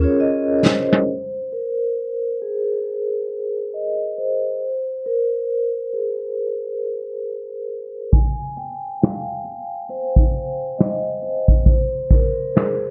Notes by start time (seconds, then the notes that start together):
Already playing: F4 G#4 A#4
0.00 C#4 F4 G#4
0.04 C#5
0.20 D#5
0.58 C#5
0.65 C5, snare
0.93 snare
1.52 A#4
2.42 G#4
3.74 D#5
4.18 C5
5.06 A#4
5.93 G#4
8.12 G#5, kick, closed hi-hat
8.57 G5, closed hi-hat
9.01 F5, finger snap, snare, closed hi-hat
9.44 closed hi-hat
9.89 C5, closed hi-hat
10.16 kick
10.34 closed hi-hat
10.78 D#5, snare, closed hi-hat
10.82 finger snap
11.22 C5, closed hi-hat
11.48 kick
11.66 C5, kick, closed hi-hat
12.10 A#4, kick, closed hi-hat
12.55 G#4, finger snap, snare, closed hi-hat